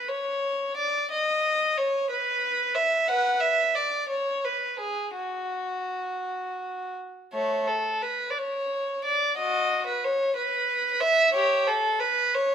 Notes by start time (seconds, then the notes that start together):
0.08 C#5
0.77 D5
1.11 D#5
1.78 C#5
2.10 B4
2.75 E5
3.08 B4 F#5
3.41 E5
3.75 D5
4.09 C#5
4.45 B4
4.80 G#4
5.16 F#4
7.33 A3 C#5
7.68 A4
8.02 B4
8.31 D5
8.38 C#5
9.05 D5
9.37 F#4 D#5
9.87 B4
10.04 C#5
10.36 B4
11.01 E5
11.33 G4 C#5
11.67 A4
12.00 B4
12.35 C#5